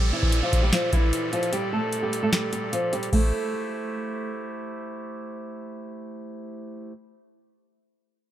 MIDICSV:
0, 0, Header, 1, 5, 480
1, 0, Start_track
1, 0, Tempo, 400000
1, 1832, Time_signature, 4, 2, 24, 8
1, 9977, End_track
2, 0, Start_track
2, 0, Title_t, "Pipe organ"
2, 0, Program_c, 0, 19
2, 0, Note_on_c, 0, 46, 72
2, 0, Note_on_c, 0, 67, 67
2, 0, Note_on_c, 0, 69, 67
2, 0, Note_on_c, 0, 74, 80
2, 3714, Note_off_c, 0, 46, 0
2, 3714, Note_off_c, 0, 67, 0
2, 3714, Note_off_c, 0, 69, 0
2, 3714, Note_off_c, 0, 74, 0
2, 3751, Note_on_c, 0, 57, 70
2, 3751, Note_on_c, 0, 64, 64
2, 3751, Note_on_c, 0, 72, 77
2, 3752, Note_on_c, 0, 67, 64
2, 8314, Note_off_c, 0, 57, 0
2, 8314, Note_off_c, 0, 64, 0
2, 8314, Note_off_c, 0, 72, 0
2, 8315, Note_off_c, 0, 67, 0
2, 9977, End_track
3, 0, Start_track
3, 0, Title_t, "Nylon-string guitar"
3, 0, Program_c, 1, 24
3, 0, Note_on_c, 1, 55, 64
3, 0, Note_on_c, 1, 67, 78
3, 140, Note_off_c, 1, 67, 0
3, 145, Note_off_c, 1, 55, 0
3, 152, Note_on_c, 1, 64, 80
3, 161, Note_on_c, 1, 52, 54
3, 491, Note_off_c, 1, 64, 0
3, 495, Note_off_c, 1, 52, 0
3, 512, Note_on_c, 1, 65, 75
3, 521, Note_on_c, 1, 53, 57
3, 739, Note_off_c, 1, 65, 0
3, 744, Note_off_c, 1, 53, 0
3, 753, Note_on_c, 1, 67, 78
3, 762, Note_on_c, 1, 55, 61
3, 866, Note_off_c, 1, 55, 0
3, 866, Note_off_c, 1, 67, 0
3, 871, Note_on_c, 1, 65, 81
3, 881, Note_on_c, 1, 53, 64
3, 1098, Note_off_c, 1, 65, 0
3, 1104, Note_off_c, 1, 53, 0
3, 1112, Note_on_c, 1, 64, 78
3, 1121, Note_on_c, 1, 52, 58
3, 1563, Note_off_c, 1, 64, 0
3, 1568, Note_off_c, 1, 52, 0
3, 1592, Note_on_c, 1, 65, 81
3, 1602, Note_on_c, 1, 53, 62
3, 1819, Note_off_c, 1, 65, 0
3, 1824, Note_off_c, 1, 53, 0
3, 1834, Note_on_c, 1, 67, 88
3, 1843, Note_on_c, 1, 55, 73
3, 2060, Note_off_c, 1, 67, 0
3, 2065, Note_off_c, 1, 55, 0
3, 2072, Note_on_c, 1, 69, 82
3, 2081, Note_on_c, 1, 57, 60
3, 2410, Note_off_c, 1, 69, 0
3, 2415, Note_off_c, 1, 57, 0
3, 2432, Note_on_c, 1, 67, 84
3, 2442, Note_on_c, 1, 55, 63
3, 2659, Note_off_c, 1, 67, 0
3, 2664, Note_off_c, 1, 55, 0
3, 2671, Note_on_c, 1, 69, 80
3, 2681, Note_on_c, 1, 57, 65
3, 2785, Note_off_c, 1, 69, 0
3, 2790, Note_off_c, 1, 57, 0
3, 2793, Note_on_c, 1, 67, 81
3, 2802, Note_on_c, 1, 55, 61
3, 3016, Note_off_c, 1, 67, 0
3, 3024, Note_off_c, 1, 55, 0
3, 3030, Note_on_c, 1, 67, 72
3, 3040, Note_on_c, 1, 55, 60
3, 3258, Note_off_c, 1, 67, 0
3, 3263, Note_off_c, 1, 55, 0
3, 3272, Note_on_c, 1, 65, 79
3, 3281, Note_on_c, 1, 53, 65
3, 3499, Note_off_c, 1, 65, 0
3, 3504, Note_off_c, 1, 53, 0
3, 3515, Note_on_c, 1, 67, 78
3, 3524, Note_on_c, 1, 55, 60
3, 3741, Note_off_c, 1, 67, 0
3, 3745, Note_off_c, 1, 55, 0
3, 3752, Note_on_c, 1, 57, 81
3, 5144, Note_off_c, 1, 57, 0
3, 9977, End_track
4, 0, Start_track
4, 0, Title_t, "Downlifter"
4, 0, Program_c, 2, 103
4, 0, Note_on_c, 2, 60, 81
4, 3753, Note_off_c, 2, 60, 0
4, 9977, End_track
5, 0, Start_track
5, 0, Title_t, "Drums"
5, 272, Note_on_c, 9, 36, 88
5, 389, Note_on_c, 9, 42, 72
5, 392, Note_off_c, 9, 36, 0
5, 509, Note_off_c, 9, 42, 0
5, 633, Note_on_c, 9, 36, 94
5, 635, Note_on_c, 9, 42, 76
5, 753, Note_off_c, 9, 36, 0
5, 755, Note_off_c, 9, 42, 0
5, 872, Note_on_c, 9, 38, 122
5, 879, Note_on_c, 9, 42, 79
5, 992, Note_off_c, 9, 38, 0
5, 999, Note_off_c, 9, 42, 0
5, 1112, Note_on_c, 9, 42, 74
5, 1113, Note_on_c, 9, 36, 110
5, 1232, Note_off_c, 9, 42, 0
5, 1233, Note_off_c, 9, 36, 0
5, 1355, Note_on_c, 9, 42, 91
5, 1475, Note_off_c, 9, 42, 0
5, 1594, Note_on_c, 9, 42, 55
5, 1713, Note_off_c, 9, 42, 0
5, 1713, Note_on_c, 9, 42, 52
5, 1832, Note_off_c, 9, 42, 0
5, 1832, Note_on_c, 9, 42, 73
5, 1952, Note_off_c, 9, 42, 0
5, 2310, Note_on_c, 9, 42, 71
5, 2430, Note_off_c, 9, 42, 0
5, 2556, Note_on_c, 9, 42, 76
5, 2676, Note_off_c, 9, 42, 0
5, 2792, Note_on_c, 9, 38, 112
5, 2799, Note_on_c, 9, 42, 77
5, 2912, Note_off_c, 9, 38, 0
5, 2919, Note_off_c, 9, 42, 0
5, 3032, Note_on_c, 9, 42, 75
5, 3152, Note_off_c, 9, 42, 0
5, 3275, Note_on_c, 9, 42, 91
5, 3395, Note_off_c, 9, 42, 0
5, 3513, Note_on_c, 9, 42, 52
5, 3633, Note_off_c, 9, 42, 0
5, 3634, Note_on_c, 9, 42, 52
5, 3753, Note_on_c, 9, 36, 99
5, 3753, Note_on_c, 9, 49, 85
5, 3754, Note_off_c, 9, 42, 0
5, 3873, Note_off_c, 9, 36, 0
5, 3873, Note_off_c, 9, 49, 0
5, 9977, End_track
0, 0, End_of_file